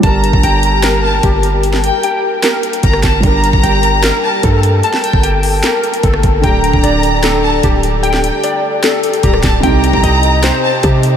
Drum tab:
HH |x-x-x-x-x---x-x-|x-x-x---x-xxx-x-|x-x-x-x-x---x-x-|x-x-x-o-x-xxx-x-|
CP |--------x-------|--------x-----x-|--------x-------|--------x-------|
SD |--------o-------|-o------o----ro-|--------o-------|-o------o----r--|
BD |o--o--------o---|------------o-o-|o--o--------o---|---o--------o-o-|

HH |x-x-x-x-x---x-x-|x-x-x---x-xxx-x-|x-x-x-x-x---x-x-|
CP |--------x-------|--------x-----x-|--------x-------|
SD |--------o-------|-o------o----ro-|--------o-------|
BD |o--o--------o---|------------o-o-|o--o--------o---|